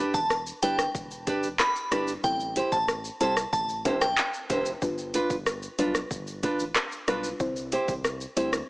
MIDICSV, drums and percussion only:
0, 0, Header, 1, 2, 480
1, 0, Start_track
1, 0, Tempo, 645161
1, 1666, Time_signature, 4, 2, 24, 8
1, 6467, End_track
2, 0, Start_track
2, 0, Title_t, "Drums"
2, 104, Note_on_c, 9, 36, 99
2, 105, Note_on_c, 9, 82, 74
2, 107, Note_off_c, 9, 82, 0
2, 107, Note_on_c, 9, 82, 80
2, 179, Note_off_c, 9, 36, 0
2, 181, Note_off_c, 9, 82, 0
2, 225, Note_on_c, 9, 82, 73
2, 226, Note_off_c, 9, 82, 0
2, 226, Note_on_c, 9, 37, 87
2, 226, Note_on_c, 9, 82, 66
2, 300, Note_off_c, 9, 37, 0
2, 301, Note_off_c, 9, 82, 0
2, 346, Note_on_c, 9, 82, 67
2, 347, Note_off_c, 9, 82, 0
2, 347, Note_on_c, 9, 82, 53
2, 421, Note_off_c, 9, 82, 0
2, 466, Note_on_c, 9, 42, 83
2, 466, Note_on_c, 9, 82, 62
2, 540, Note_off_c, 9, 42, 0
2, 540, Note_off_c, 9, 82, 0
2, 584, Note_on_c, 9, 82, 70
2, 585, Note_on_c, 9, 37, 88
2, 586, Note_off_c, 9, 82, 0
2, 586, Note_on_c, 9, 82, 81
2, 660, Note_off_c, 9, 37, 0
2, 661, Note_off_c, 9, 82, 0
2, 704, Note_on_c, 9, 36, 96
2, 706, Note_on_c, 9, 82, 58
2, 708, Note_off_c, 9, 82, 0
2, 708, Note_on_c, 9, 82, 78
2, 779, Note_off_c, 9, 36, 0
2, 782, Note_off_c, 9, 82, 0
2, 825, Note_on_c, 9, 82, 58
2, 826, Note_off_c, 9, 82, 0
2, 826, Note_on_c, 9, 82, 53
2, 900, Note_off_c, 9, 82, 0
2, 945, Note_on_c, 9, 82, 60
2, 946, Note_off_c, 9, 82, 0
2, 946, Note_on_c, 9, 36, 91
2, 946, Note_on_c, 9, 42, 73
2, 946, Note_on_c, 9, 82, 55
2, 1020, Note_off_c, 9, 42, 0
2, 1020, Note_off_c, 9, 82, 0
2, 1021, Note_off_c, 9, 36, 0
2, 1065, Note_on_c, 9, 82, 79
2, 1066, Note_off_c, 9, 82, 0
2, 1066, Note_on_c, 9, 82, 81
2, 1141, Note_off_c, 9, 82, 0
2, 1185, Note_on_c, 9, 82, 76
2, 1187, Note_off_c, 9, 82, 0
2, 1187, Note_on_c, 9, 37, 91
2, 1187, Note_on_c, 9, 39, 90
2, 1187, Note_on_c, 9, 82, 75
2, 1261, Note_off_c, 9, 37, 0
2, 1261, Note_off_c, 9, 39, 0
2, 1262, Note_off_c, 9, 82, 0
2, 1306, Note_on_c, 9, 82, 41
2, 1307, Note_off_c, 9, 82, 0
2, 1307, Note_on_c, 9, 82, 50
2, 1381, Note_off_c, 9, 82, 0
2, 1424, Note_on_c, 9, 82, 50
2, 1427, Note_off_c, 9, 82, 0
2, 1427, Note_on_c, 9, 37, 86
2, 1427, Note_on_c, 9, 42, 76
2, 1427, Note_on_c, 9, 82, 55
2, 1501, Note_off_c, 9, 42, 0
2, 1501, Note_off_c, 9, 82, 0
2, 1502, Note_off_c, 9, 37, 0
2, 1544, Note_on_c, 9, 82, 78
2, 1547, Note_off_c, 9, 82, 0
2, 1547, Note_on_c, 9, 82, 73
2, 1621, Note_off_c, 9, 82, 0
2, 1665, Note_on_c, 9, 82, 79
2, 1666, Note_off_c, 9, 82, 0
2, 1666, Note_on_c, 9, 36, 102
2, 1666, Note_on_c, 9, 82, 78
2, 1740, Note_off_c, 9, 36, 0
2, 1741, Note_off_c, 9, 82, 0
2, 1784, Note_on_c, 9, 82, 48
2, 1786, Note_off_c, 9, 82, 0
2, 1786, Note_on_c, 9, 82, 52
2, 1861, Note_off_c, 9, 82, 0
2, 1904, Note_on_c, 9, 42, 78
2, 1904, Note_on_c, 9, 82, 57
2, 1979, Note_off_c, 9, 42, 0
2, 1979, Note_off_c, 9, 82, 0
2, 2024, Note_on_c, 9, 36, 94
2, 2026, Note_on_c, 9, 82, 73
2, 2027, Note_off_c, 9, 82, 0
2, 2027, Note_on_c, 9, 82, 75
2, 2099, Note_off_c, 9, 36, 0
2, 2102, Note_off_c, 9, 82, 0
2, 2146, Note_on_c, 9, 37, 88
2, 2146, Note_on_c, 9, 82, 74
2, 2220, Note_off_c, 9, 37, 0
2, 2220, Note_off_c, 9, 82, 0
2, 2266, Note_on_c, 9, 82, 65
2, 2267, Note_off_c, 9, 82, 0
2, 2267, Note_on_c, 9, 82, 57
2, 2342, Note_off_c, 9, 82, 0
2, 2385, Note_on_c, 9, 42, 82
2, 2385, Note_on_c, 9, 82, 59
2, 2460, Note_off_c, 9, 42, 0
2, 2460, Note_off_c, 9, 82, 0
2, 2505, Note_on_c, 9, 82, 68
2, 2506, Note_on_c, 9, 37, 86
2, 2507, Note_off_c, 9, 82, 0
2, 2507, Note_on_c, 9, 82, 80
2, 2580, Note_off_c, 9, 37, 0
2, 2581, Note_off_c, 9, 82, 0
2, 2624, Note_on_c, 9, 36, 92
2, 2627, Note_on_c, 9, 82, 59
2, 2628, Note_off_c, 9, 82, 0
2, 2628, Note_on_c, 9, 82, 82
2, 2699, Note_off_c, 9, 36, 0
2, 2702, Note_off_c, 9, 82, 0
2, 2746, Note_on_c, 9, 82, 62
2, 2747, Note_off_c, 9, 82, 0
2, 2747, Note_on_c, 9, 82, 51
2, 2821, Note_off_c, 9, 82, 0
2, 2866, Note_on_c, 9, 36, 92
2, 2866, Note_on_c, 9, 42, 72
2, 2866, Note_on_c, 9, 82, 53
2, 2867, Note_off_c, 9, 82, 0
2, 2867, Note_on_c, 9, 65, 88
2, 2867, Note_on_c, 9, 82, 62
2, 2941, Note_off_c, 9, 36, 0
2, 2941, Note_off_c, 9, 42, 0
2, 2941, Note_off_c, 9, 65, 0
2, 2941, Note_off_c, 9, 82, 0
2, 2986, Note_on_c, 9, 82, 78
2, 2987, Note_off_c, 9, 82, 0
2, 2987, Note_on_c, 9, 82, 75
2, 2988, Note_on_c, 9, 37, 97
2, 3061, Note_off_c, 9, 82, 0
2, 3062, Note_off_c, 9, 37, 0
2, 3106, Note_on_c, 9, 82, 76
2, 3107, Note_on_c, 9, 39, 89
2, 3108, Note_off_c, 9, 82, 0
2, 3108, Note_on_c, 9, 82, 72
2, 3182, Note_off_c, 9, 39, 0
2, 3183, Note_off_c, 9, 82, 0
2, 3227, Note_on_c, 9, 82, 52
2, 3302, Note_off_c, 9, 82, 0
2, 3346, Note_on_c, 9, 65, 68
2, 3346, Note_on_c, 9, 82, 52
2, 3347, Note_off_c, 9, 82, 0
2, 3347, Note_on_c, 9, 36, 97
2, 3347, Note_on_c, 9, 42, 75
2, 3347, Note_on_c, 9, 82, 55
2, 3420, Note_off_c, 9, 65, 0
2, 3421, Note_off_c, 9, 36, 0
2, 3422, Note_off_c, 9, 42, 0
2, 3422, Note_off_c, 9, 82, 0
2, 3464, Note_on_c, 9, 82, 81
2, 3468, Note_off_c, 9, 82, 0
2, 3468, Note_on_c, 9, 82, 75
2, 3542, Note_off_c, 9, 82, 0
2, 3586, Note_on_c, 9, 36, 103
2, 3586, Note_on_c, 9, 82, 82
2, 3588, Note_off_c, 9, 82, 0
2, 3588, Note_on_c, 9, 82, 76
2, 3660, Note_off_c, 9, 36, 0
2, 3663, Note_off_c, 9, 82, 0
2, 3706, Note_on_c, 9, 82, 51
2, 3780, Note_off_c, 9, 82, 0
2, 3824, Note_on_c, 9, 42, 75
2, 3824, Note_on_c, 9, 82, 56
2, 3898, Note_off_c, 9, 42, 0
2, 3898, Note_off_c, 9, 82, 0
2, 3944, Note_on_c, 9, 36, 98
2, 3945, Note_on_c, 9, 82, 73
2, 3948, Note_off_c, 9, 82, 0
2, 3948, Note_on_c, 9, 82, 77
2, 4019, Note_off_c, 9, 36, 0
2, 4022, Note_off_c, 9, 82, 0
2, 4066, Note_on_c, 9, 37, 92
2, 4066, Note_on_c, 9, 82, 73
2, 4140, Note_off_c, 9, 37, 0
2, 4141, Note_off_c, 9, 82, 0
2, 4185, Note_on_c, 9, 82, 66
2, 4188, Note_off_c, 9, 82, 0
2, 4188, Note_on_c, 9, 82, 54
2, 4262, Note_off_c, 9, 82, 0
2, 4305, Note_on_c, 9, 42, 85
2, 4305, Note_on_c, 9, 82, 60
2, 4379, Note_off_c, 9, 42, 0
2, 4379, Note_off_c, 9, 82, 0
2, 4425, Note_on_c, 9, 37, 87
2, 4426, Note_on_c, 9, 82, 84
2, 4499, Note_off_c, 9, 37, 0
2, 4500, Note_off_c, 9, 82, 0
2, 4544, Note_on_c, 9, 36, 94
2, 4547, Note_on_c, 9, 82, 60
2, 4619, Note_off_c, 9, 36, 0
2, 4622, Note_off_c, 9, 82, 0
2, 4666, Note_on_c, 9, 82, 55
2, 4667, Note_off_c, 9, 82, 0
2, 4667, Note_on_c, 9, 82, 60
2, 4741, Note_off_c, 9, 82, 0
2, 4786, Note_on_c, 9, 36, 91
2, 4786, Note_on_c, 9, 42, 71
2, 4786, Note_on_c, 9, 82, 53
2, 4787, Note_off_c, 9, 82, 0
2, 4787, Note_on_c, 9, 82, 64
2, 4860, Note_off_c, 9, 42, 0
2, 4861, Note_off_c, 9, 36, 0
2, 4861, Note_off_c, 9, 82, 0
2, 4905, Note_on_c, 9, 82, 76
2, 4907, Note_off_c, 9, 82, 0
2, 4907, Note_on_c, 9, 82, 80
2, 4981, Note_off_c, 9, 82, 0
2, 5026, Note_on_c, 9, 82, 82
2, 5027, Note_on_c, 9, 37, 87
2, 5027, Note_on_c, 9, 39, 89
2, 5028, Note_off_c, 9, 82, 0
2, 5028, Note_on_c, 9, 82, 79
2, 5101, Note_off_c, 9, 37, 0
2, 5101, Note_off_c, 9, 39, 0
2, 5103, Note_off_c, 9, 82, 0
2, 5147, Note_on_c, 9, 82, 43
2, 5222, Note_off_c, 9, 82, 0
2, 5265, Note_on_c, 9, 82, 51
2, 5267, Note_off_c, 9, 82, 0
2, 5267, Note_on_c, 9, 37, 85
2, 5267, Note_on_c, 9, 42, 75
2, 5267, Note_on_c, 9, 82, 53
2, 5341, Note_off_c, 9, 42, 0
2, 5341, Note_off_c, 9, 82, 0
2, 5342, Note_off_c, 9, 37, 0
2, 5384, Note_on_c, 9, 82, 79
2, 5388, Note_off_c, 9, 82, 0
2, 5388, Note_on_c, 9, 82, 74
2, 5462, Note_off_c, 9, 82, 0
2, 5506, Note_on_c, 9, 36, 103
2, 5506, Note_on_c, 9, 82, 75
2, 5507, Note_off_c, 9, 82, 0
2, 5507, Note_on_c, 9, 82, 79
2, 5580, Note_off_c, 9, 36, 0
2, 5582, Note_off_c, 9, 82, 0
2, 5625, Note_on_c, 9, 82, 50
2, 5626, Note_off_c, 9, 82, 0
2, 5626, Note_on_c, 9, 82, 52
2, 5701, Note_off_c, 9, 82, 0
2, 5744, Note_on_c, 9, 42, 77
2, 5744, Note_on_c, 9, 82, 53
2, 5819, Note_off_c, 9, 42, 0
2, 5819, Note_off_c, 9, 82, 0
2, 5864, Note_on_c, 9, 36, 95
2, 5866, Note_on_c, 9, 82, 74
2, 5867, Note_off_c, 9, 82, 0
2, 5867, Note_on_c, 9, 82, 77
2, 5939, Note_off_c, 9, 36, 0
2, 5942, Note_off_c, 9, 82, 0
2, 5986, Note_on_c, 9, 37, 90
2, 5986, Note_on_c, 9, 82, 68
2, 6060, Note_off_c, 9, 37, 0
2, 6060, Note_off_c, 9, 82, 0
2, 6106, Note_on_c, 9, 82, 66
2, 6107, Note_off_c, 9, 82, 0
2, 6107, Note_on_c, 9, 82, 56
2, 6182, Note_off_c, 9, 82, 0
2, 6226, Note_on_c, 9, 42, 82
2, 6226, Note_on_c, 9, 82, 60
2, 6300, Note_off_c, 9, 42, 0
2, 6300, Note_off_c, 9, 82, 0
2, 6345, Note_on_c, 9, 37, 90
2, 6345, Note_on_c, 9, 82, 71
2, 6346, Note_off_c, 9, 82, 0
2, 6346, Note_on_c, 9, 82, 81
2, 6420, Note_off_c, 9, 37, 0
2, 6421, Note_off_c, 9, 82, 0
2, 6467, End_track
0, 0, End_of_file